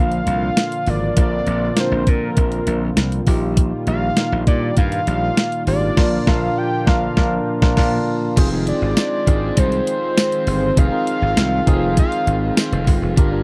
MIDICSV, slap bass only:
0, 0, Header, 1, 2, 480
1, 0, Start_track
1, 0, Tempo, 600000
1, 938, Time_signature, 4, 2, 24, 8
1, 10745, End_track
2, 0, Start_track
2, 0, Title_t, "Slap bass"
2, 0, Program_c, 0, 36
2, 0, Note_on_c, 0, 34, 87
2, 158, Note_off_c, 0, 34, 0
2, 214, Note_on_c, 0, 36, 79
2, 395, Note_off_c, 0, 36, 0
2, 696, Note_on_c, 0, 32, 86
2, 877, Note_off_c, 0, 32, 0
2, 936, Note_on_c, 0, 34, 99
2, 1117, Note_off_c, 0, 34, 0
2, 1173, Note_on_c, 0, 34, 92
2, 1355, Note_off_c, 0, 34, 0
2, 1532, Note_on_c, 0, 34, 85
2, 1625, Note_off_c, 0, 34, 0
2, 1655, Note_on_c, 0, 46, 92
2, 1836, Note_off_c, 0, 46, 0
2, 1896, Note_on_c, 0, 34, 97
2, 2077, Note_off_c, 0, 34, 0
2, 2135, Note_on_c, 0, 34, 91
2, 2316, Note_off_c, 0, 34, 0
2, 2375, Note_on_c, 0, 36, 88
2, 2556, Note_off_c, 0, 36, 0
2, 2615, Note_on_c, 0, 34, 92
2, 2976, Note_off_c, 0, 34, 0
2, 3096, Note_on_c, 0, 34, 92
2, 3277, Note_off_c, 0, 34, 0
2, 3458, Note_on_c, 0, 34, 97
2, 3548, Note_off_c, 0, 34, 0
2, 3576, Note_on_c, 0, 46, 99
2, 3757, Note_off_c, 0, 46, 0
2, 3817, Note_on_c, 0, 43, 91
2, 3997, Note_off_c, 0, 43, 0
2, 4057, Note_on_c, 0, 34, 82
2, 4238, Note_off_c, 0, 34, 0
2, 4536, Note_on_c, 0, 32, 89
2, 4717, Note_off_c, 0, 32, 0
2, 4778, Note_on_c, 0, 34, 97
2, 4941, Note_off_c, 0, 34, 0
2, 5016, Note_on_c, 0, 34, 102
2, 5180, Note_off_c, 0, 34, 0
2, 5497, Note_on_c, 0, 34, 101
2, 5661, Note_off_c, 0, 34, 0
2, 5737, Note_on_c, 0, 34, 102
2, 5901, Note_off_c, 0, 34, 0
2, 6097, Note_on_c, 0, 34, 110
2, 6199, Note_off_c, 0, 34, 0
2, 6217, Note_on_c, 0, 34, 102
2, 6381, Note_off_c, 0, 34, 0
2, 6697, Note_on_c, 0, 29, 111
2, 6968, Note_off_c, 0, 29, 0
2, 7053, Note_on_c, 0, 32, 85
2, 7145, Note_off_c, 0, 32, 0
2, 7417, Note_on_c, 0, 32, 94
2, 7597, Note_off_c, 0, 32, 0
2, 7657, Note_on_c, 0, 36, 91
2, 7838, Note_off_c, 0, 36, 0
2, 8376, Note_on_c, 0, 31, 90
2, 8557, Note_off_c, 0, 31, 0
2, 8618, Note_on_c, 0, 29, 97
2, 8708, Note_off_c, 0, 29, 0
2, 8975, Note_on_c, 0, 32, 76
2, 9066, Note_off_c, 0, 32, 0
2, 9096, Note_on_c, 0, 36, 97
2, 9277, Note_off_c, 0, 36, 0
2, 9337, Note_on_c, 0, 29, 85
2, 9607, Note_off_c, 0, 29, 0
2, 9815, Note_on_c, 0, 32, 88
2, 9996, Note_off_c, 0, 32, 0
2, 10177, Note_on_c, 0, 29, 81
2, 10267, Note_off_c, 0, 29, 0
2, 10299, Note_on_c, 0, 31, 99
2, 10388, Note_off_c, 0, 31, 0
2, 10415, Note_on_c, 0, 29, 94
2, 10506, Note_off_c, 0, 29, 0
2, 10539, Note_on_c, 0, 31, 105
2, 10745, Note_off_c, 0, 31, 0
2, 10745, End_track
0, 0, End_of_file